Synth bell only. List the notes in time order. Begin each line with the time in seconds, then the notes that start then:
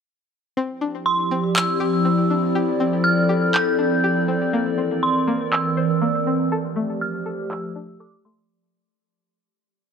1.06 C6
1.56 E6
3.04 F6
3.54 G6
5.03 C6
5.52 E6
7.01 F6
7.51 E6
8.00 D6
8.25 C6